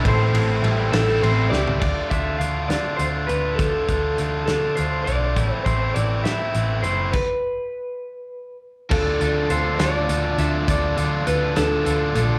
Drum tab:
CC |------------|x-----------|------------|------------|
RD |x-x-x-x-x---|------------|------------|------------|
HH |------------|--x-x-x-x-x-|x-x-x-x-x-x-|x-x-x-x-x-x-|
SD |------o---o-|------o-----|------o-----|------o-----|
FT |-----------o|------------|------------|------------|
BD |o-----------|o-o---------|o-o---------|o-o---------|

CC |x-----------|x-----------|------------|
RD |------------|------------|------------|
HH |------------|--x-x-x-x-x-|x-x-x-x-x-x-|
SD |------------|------o-----|------o-----|
FT |------------|------------|------------|
BD |o-----------|o-----------|o-----------|